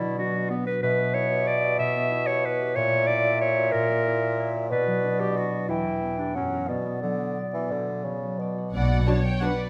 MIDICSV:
0, 0, Header, 1, 11, 480
1, 0, Start_track
1, 0, Key_signature, 2, "minor"
1, 0, Tempo, 324324
1, 1215, Time_signature, 3, 2, 24, 8
1, 8901, Tempo, 338792
1, 14117, End_track
2, 0, Start_track
2, 0, Title_t, "Violin section"
2, 0, Program_c, 0, 48
2, 12757, Note_on_c, 0, 78, 61
2, 13195, Note_off_c, 0, 78, 0
2, 13226, Note_on_c, 0, 81, 61
2, 13472, Note_on_c, 0, 79, 61
2, 13474, Note_off_c, 0, 81, 0
2, 13699, Note_on_c, 0, 78, 62
2, 13711, Note_off_c, 0, 79, 0
2, 13937, Note_on_c, 0, 74, 56
2, 13941, Note_off_c, 0, 78, 0
2, 14117, Note_off_c, 0, 74, 0
2, 14117, End_track
3, 0, Start_track
3, 0, Title_t, "Flute"
3, 0, Program_c, 1, 73
3, 0, Note_on_c, 1, 74, 49
3, 785, Note_off_c, 1, 74, 0
3, 1238, Note_on_c, 1, 76, 52
3, 4032, Note_off_c, 1, 76, 0
3, 4090, Note_on_c, 1, 76, 65
3, 6909, Note_off_c, 1, 76, 0
3, 6967, Note_on_c, 1, 74, 51
3, 8431, Note_on_c, 1, 79, 47
3, 8454, Note_off_c, 1, 74, 0
3, 9379, Note_on_c, 1, 78, 39
3, 9400, Note_off_c, 1, 79, 0
3, 9853, Note_on_c, 1, 74, 48
3, 9875, Note_off_c, 1, 78, 0
3, 12527, Note_off_c, 1, 74, 0
3, 14117, End_track
4, 0, Start_track
4, 0, Title_t, "Violin section"
4, 0, Program_c, 2, 48
4, 12778, Note_on_c, 2, 74, 48
4, 13206, Note_off_c, 2, 74, 0
4, 13257, Note_on_c, 2, 73, 51
4, 13723, Note_off_c, 2, 73, 0
4, 13742, Note_on_c, 2, 71, 55
4, 14117, Note_off_c, 2, 71, 0
4, 14117, End_track
5, 0, Start_track
5, 0, Title_t, "Clarinet"
5, 0, Program_c, 3, 71
5, 0, Note_on_c, 3, 64, 69
5, 264, Note_off_c, 3, 64, 0
5, 273, Note_on_c, 3, 66, 63
5, 735, Note_on_c, 3, 59, 66
5, 757, Note_off_c, 3, 66, 0
5, 980, Note_off_c, 3, 59, 0
5, 986, Note_on_c, 3, 71, 67
5, 1209, Note_off_c, 3, 71, 0
5, 1227, Note_on_c, 3, 71, 74
5, 1685, Note_on_c, 3, 73, 75
5, 1707, Note_off_c, 3, 71, 0
5, 2185, Note_on_c, 3, 74, 76
5, 2207, Note_off_c, 3, 73, 0
5, 2642, Note_off_c, 3, 74, 0
5, 2651, Note_on_c, 3, 76, 78
5, 3353, Note_on_c, 3, 73, 76
5, 3375, Note_off_c, 3, 76, 0
5, 3628, Note_on_c, 3, 71, 76
5, 3650, Note_off_c, 3, 73, 0
5, 4078, Note_on_c, 3, 73, 83
5, 4100, Note_off_c, 3, 71, 0
5, 4549, Note_on_c, 3, 74, 79
5, 4571, Note_off_c, 3, 73, 0
5, 5040, Note_off_c, 3, 74, 0
5, 5049, Note_on_c, 3, 73, 74
5, 5502, Note_on_c, 3, 70, 78
5, 5525, Note_off_c, 3, 73, 0
5, 6722, Note_off_c, 3, 70, 0
5, 6964, Note_on_c, 3, 71, 73
5, 7695, Note_on_c, 3, 67, 64
5, 7717, Note_off_c, 3, 71, 0
5, 7950, Note_on_c, 3, 66, 59
5, 7972, Note_off_c, 3, 67, 0
5, 8414, Note_on_c, 3, 64, 67
5, 8436, Note_off_c, 3, 66, 0
5, 9144, Note_on_c, 3, 62, 57
5, 9165, Note_off_c, 3, 64, 0
5, 9384, Note_off_c, 3, 62, 0
5, 9392, Note_on_c, 3, 61, 56
5, 9847, Note_off_c, 3, 61, 0
5, 9854, Note_on_c, 3, 59, 55
5, 12238, Note_off_c, 3, 59, 0
5, 14117, End_track
6, 0, Start_track
6, 0, Title_t, "Harp"
6, 0, Program_c, 4, 46
6, 0, Note_on_c, 4, 47, 49
6, 0, Note_on_c, 4, 59, 32
6, 0, Note_on_c, 4, 62, 40
6, 0, Note_on_c, 4, 66, 38
6, 0, Note_on_c, 4, 71, 44
6, 10, Note_on_c, 4, 54, 38
6, 241, Note_off_c, 4, 62, 0
6, 258, Note_on_c, 4, 62, 40
6, 483, Note_off_c, 4, 66, 0
6, 501, Note_on_c, 4, 66, 41
6, 738, Note_off_c, 4, 71, 0
6, 756, Note_on_c, 4, 71, 44
6, 986, Note_off_c, 4, 66, 0
6, 1004, Note_on_c, 4, 66, 43
6, 1206, Note_off_c, 4, 47, 0
6, 1224, Note_on_c, 4, 47, 52
6, 1227, Note_off_c, 4, 54, 0
6, 1231, Note_off_c, 4, 62, 0
6, 1238, Note_off_c, 4, 59, 0
6, 1240, Note_off_c, 4, 66, 0
6, 1450, Note_on_c, 4, 59, 37
6, 1698, Note_on_c, 4, 64, 47
6, 1938, Note_on_c, 4, 67, 43
6, 2188, Note_on_c, 4, 73, 47
6, 2412, Note_off_c, 4, 67, 0
6, 2430, Note_on_c, 4, 67, 43
6, 2632, Note_off_c, 4, 47, 0
6, 2650, Note_on_c, 4, 47, 54
6, 2872, Note_off_c, 4, 59, 0
6, 2889, Note_on_c, 4, 59, 38
6, 3109, Note_off_c, 4, 64, 0
6, 3127, Note_on_c, 4, 64, 44
6, 3356, Note_off_c, 4, 67, 0
6, 3374, Note_on_c, 4, 67, 43
6, 3611, Note_off_c, 4, 73, 0
6, 3629, Note_on_c, 4, 73, 48
6, 3847, Note_off_c, 4, 67, 0
6, 3865, Note_on_c, 4, 67, 44
6, 4086, Note_on_c, 4, 46, 57
6, 4098, Note_off_c, 4, 47, 0
6, 4099, Note_off_c, 4, 71, 0
6, 4104, Note_off_c, 4, 59, 0
6, 4104, Note_off_c, 4, 67, 0
6, 4327, Note_on_c, 4, 58, 39
6, 4550, Note_off_c, 4, 64, 0
6, 4568, Note_on_c, 4, 64, 44
6, 4816, Note_on_c, 4, 66, 40
6, 5042, Note_off_c, 4, 73, 0
6, 5060, Note_on_c, 4, 73, 49
6, 5295, Note_off_c, 4, 66, 0
6, 5312, Note_on_c, 4, 66, 46
6, 5520, Note_off_c, 4, 46, 0
6, 5538, Note_on_c, 4, 46, 56
6, 5746, Note_off_c, 4, 58, 0
6, 5764, Note_on_c, 4, 58, 38
6, 6005, Note_off_c, 4, 64, 0
6, 6022, Note_on_c, 4, 64, 47
6, 6235, Note_off_c, 4, 66, 0
6, 6253, Note_on_c, 4, 66, 42
6, 6482, Note_off_c, 4, 73, 0
6, 6500, Note_on_c, 4, 73, 46
6, 6725, Note_off_c, 4, 66, 0
6, 6743, Note_on_c, 4, 66, 43
6, 6965, Note_on_c, 4, 47, 51
6, 6982, Note_off_c, 4, 73, 0
6, 6984, Note_off_c, 4, 58, 0
6, 6987, Note_off_c, 4, 46, 0
6, 6991, Note_off_c, 4, 64, 0
6, 7202, Note_on_c, 4, 54, 39
6, 7446, Note_on_c, 4, 62, 41
6, 7693, Note_off_c, 4, 66, 0
6, 7711, Note_on_c, 4, 66, 38
6, 7948, Note_on_c, 4, 71, 42
6, 8174, Note_off_c, 4, 66, 0
6, 8192, Note_on_c, 4, 66, 38
6, 8412, Note_on_c, 4, 40, 47
6, 8437, Note_off_c, 4, 66, 0
6, 8438, Note_off_c, 4, 47, 0
6, 8438, Note_off_c, 4, 62, 0
6, 8440, Note_off_c, 4, 54, 0
6, 8651, Note_on_c, 4, 47, 32
6, 8898, Note_on_c, 4, 59, 40
6, 9146, Note_on_c, 4, 67, 35
6, 9397, Note_on_c, 4, 42, 47
6, 9407, Note_off_c, 4, 40, 0
6, 9409, Note_off_c, 4, 59, 0
6, 9409, Note_off_c, 4, 67, 0
6, 9410, Note_off_c, 4, 71, 0
6, 9411, Note_off_c, 4, 47, 0
6, 9630, Note_on_c, 4, 66, 32
6, 9639, Note_on_c, 4, 70, 35
6, 9859, Note_on_c, 4, 47, 41
6, 9876, Note_off_c, 4, 42, 0
6, 9877, Note_off_c, 4, 70, 0
6, 10091, Note_on_c, 4, 59, 30
6, 10340, Note_on_c, 4, 54, 35
6, 10568, Note_off_c, 4, 66, 0
6, 10585, Note_on_c, 4, 66, 32
6, 10847, Note_on_c, 4, 74, 37
6, 11072, Note_off_c, 4, 66, 0
6, 11089, Note_on_c, 4, 66, 31
6, 11294, Note_off_c, 4, 47, 0
6, 11311, Note_on_c, 4, 47, 38
6, 11540, Note_off_c, 4, 59, 0
6, 11557, Note_on_c, 4, 59, 29
6, 11785, Note_off_c, 4, 54, 0
6, 11802, Note_on_c, 4, 54, 33
6, 12029, Note_off_c, 4, 66, 0
6, 12046, Note_on_c, 4, 66, 31
6, 12278, Note_off_c, 4, 74, 0
6, 12295, Note_on_c, 4, 74, 33
6, 12521, Note_off_c, 4, 66, 0
6, 12538, Note_on_c, 4, 66, 29
6, 12745, Note_off_c, 4, 47, 0
6, 12762, Note_on_c, 4, 47, 47
6, 12978, Note_off_c, 4, 59, 0
6, 12995, Note_on_c, 4, 59, 32
6, 13228, Note_off_c, 4, 54, 0
6, 13245, Note_on_c, 4, 54, 37
6, 13478, Note_off_c, 4, 66, 0
6, 13495, Note_on_c, 4, 66, 34
6, 13708, Note_off_c, 4, 74, 0
6, 13725, Note_on_c, 4, 74, 39
6, 13945, Note_off_c, 4, 66, 0
6, 13962, Note_on_c, 4, 66, 35
6, 14117, Note_off_c, 4, 47, 0
6, 14117, Note_off_c, 4, 54, 0
6, 14117, Note_off_c, 4, 59, 0
6, 14117, Note_off_c, 4, 66, 0
6, 14117, Note_off_c, 4, 74, 0
6, 14117, End_track
7, 0, Start_track
7, 0, Title_t, "Viola section"
7, 0, Program_c, 5, 48
7, 13226, Note_on_c, 5, 66, 39
7, 13228, Note_on_c, 5, 62, 41
7, 13339, Note_off_c, 5, 66, 0
7, 13341, Note_off_c, 5, 62, 0
7, 13714, Note_on_c, 5, 62, 42
7, 13718, Note_on_c, 5, 66, 40
7, 13828, Note_off_c, 5, 62, 0
7, 13831, Note_off_c, 5, 66, 0
7, 14117, End_track
8, 0, Start_track
8, 0, Title_t, "French horn section"
8, 0, Program_c, 6, 60
8, 13221, Note_on_c, 6, 54, 36
8, 13226, Note_on_c, 6, 62, 40
8, 13400, Note_off_c, 6, 54, 0
8, 13403, Note_off_c, 6, 62, 0
8, 13712, Note_on_c, 6, 62, 43
8, 13717, Note_on_c, 6, 54, 39
8, 13878, Note_off_c, 6, 62, 0
8, 13882, Note_off_c, 6, 54, 0
8, 14117, End_track
9, 0, Start_track
9, 0, Title_t, "Bassoon"
9, 0, Program_c, 7, 70
9, 0, Note_on_c, 7, 47, 53
9, 775, Note_off_c, 7, 47, 0
9, 1226, Note_on_c, 7, 47, 58
9, 4080, Note_on_c, 7, 46, 63
9, 4103, Note_off_c, 7, 47, 0
9, 6954, Note_on_c, 7, 47, 60
9, 6977, Note_off_c, 7, 46, 0
9, 8414, Note_off_c, 7, 47, 0
9, 8426, Note_on_c, 7, 52, 49
9, 9379, Note_on_c, 7, 54, 41
9, 9400, Note_off_c, 7, 52, 0
9, 9838, Note_on_c, 7, 47, 42
9, 9859, Note_off_c, 7, 54, 0
9, 10274, Note_off_c, 7, 47, 0
9, 10326, Note_on_c, 7, 50, 51
9, 10851, Note_off_c, 7, 50, 0
9, 11060, Note_on_c, 7, 52, 53
9, 11300, Note_on_c, 7, 50, 51
9, 11322, Note_off_c, 7, 52, 0
9, 11780, Note_on_c, 7, 49, 46
9, 11801, Note_off_c, 7, 50, 0
9, 12270, Note_on_c, 7, 47, 37
9, 12292, Note_off_c, 7, 49, 0
9, 12748, Note_off_c, 7, 47, 0
9, 14117, End_track
10, 0, Start_track
10, 0, Title_t, "Cello section"
10, 0, Program_c, 8, 48
10, 12759, Note_on_c, 8, 47, 53
10, 13147, Note_off_c, 8, 47, 0
10, 14117, End_track
11, 0, Start_track
11, 0, Title_t, "Double bass section"
11, 0, Program_c, 10, 48
11, 12758, Note_on_c, 10, 35, 50
11, 13146, Note_off_c, 10, 35, 0
11, 14117, End_track
0, 0, End_of_file